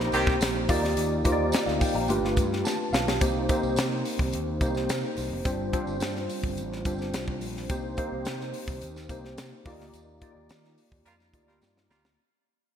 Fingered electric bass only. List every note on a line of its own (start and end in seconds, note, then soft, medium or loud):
0.13 0.37 C2 loud
0.41 0.65 A#1 medium
0.69 0.93 D#2 loud
0.97 1.20 D#2 loud
1.25 1.49 D#2 loud
1.67 1.79 D2 loud
1.95 2.07 A#1 medium
2.09 2.21 G1 loud
2.23 2.35 G1 medium
2.37 2.61 G2 loud
2.93 3.16 B1 loud
3.21 3.45 C2 loud
3.63 3.75 C2 medium
3.77 4.01 C3 loud
4.19 4.31 C2 medium
4.34 4.57 D#2 loud
4.61 4.85 C2 medium
4.89 5.01 C3 loud
5.18 5.29 C2 medium
5.31 5.43 F1 medium
5.45 5.69 G1 loud
5.87 5.99 G1 loud
6.01 6.25 G2 loud
6.44 6.55 G1 loud
6.57 6.81 A1 loud
6.85 7.09 G1 medium
7.13 7.41 C2 medium
7.41 7.65 A#1 medium
7.70 7.93 C2 loud
8.12 8.24 C2 medium
8.26 8.49 C3 loud
8.67 8.79 C2 medium
8.81 9.05 D#2 loud
9.09 9.33 C2 medium
9.38 9.50 C3 loud
9.66 9.80 D#2 loud
9.80 9.92 D2 loud
9.94 10.17 D#2 loud
10.35 10.47 D#2 loud
10.50 10.74 D#3 loud
10.92 11.04 D#2 medium
11.06 11.30 F2 loud
11.33 11.57 D2 medium
11.62 11.85 G2 medium
11.90 12.13 D2 medium